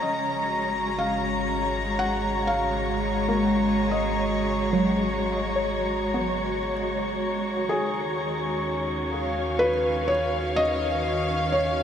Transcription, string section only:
Already playing: C#4 A#5
0.05 G#3
0.42 F#4
1.19 C#5
7.70 D#3
8.37 C#4
9.10 F5

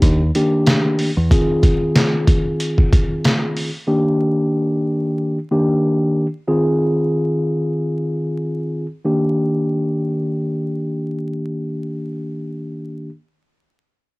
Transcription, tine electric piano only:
Already playing: A#3 D4 D#4 G4
0.35 D#3 A#3 D4 G4
1.31 D#3 C4 F4 G#4
3.87 D#3 A#3 D4 G4
5.51 D#3 A#3 D4 G4
6.47 D#3 C4 F4 G#4
9.05 D#3 A#3 D4 G4

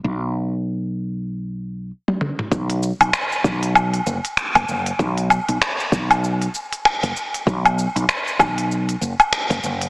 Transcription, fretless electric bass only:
0.04 B1
2.52 B1
3.01 B1
3.44 B1
4.07 F#1
4.55 F#1
4.68 F#1
4.99 B1
5.49 B1
5.92 B1
7.03 F#1
7.47 B1
7.96 B1
8.39 B1
9.01 F#1
9.50 F#1
9.63 F#1

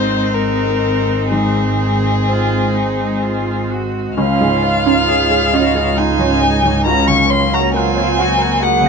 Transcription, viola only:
Already playing: D#4
2.28 F4
2.75 D#4
3.23 F4
3.70 F#4
4.18 C#4
4.63 F4
5.96 D#4
6.86 C#4
7.74 C4
8.63 A#3

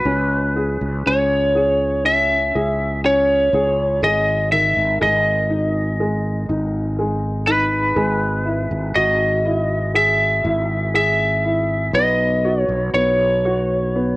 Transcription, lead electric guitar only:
Already playing: B4
1.07 C#5
2.06 E5
3.06 C#5
4.04 D#5
4.52 E5
5.03 D#5
7.47 B4
8.95 D#5
9.96 E5
10.96 E5
11.95 D#5
12.62 C#5
12.94 C#5

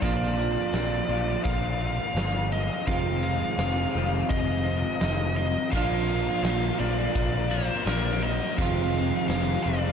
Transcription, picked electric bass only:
0.03 A#1
0.73 A#1
1.09 A#1
1.46 A#1
2.15 G1
2.88 F1
3.58 F1
3.95 F1
4.30 F1
5.02 F1
5.73 A#1
6.43 A#1
6.80 A#1
7.16 A#1
7.86 A#1
8.58 F1
9.29 F1
9.66 F1

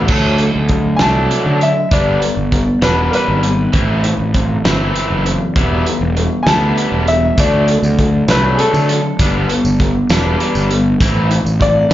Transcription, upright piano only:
0.96 G#5
1.01 A5
1.63 E5
1.93 D5
2.83 B4
3.11 A#4 B4
6.43 G#5
6.47 A5
7.08 E5
7.40 D5
8.30 B4
8.55 G#4
8.59 A4
11.62 D5

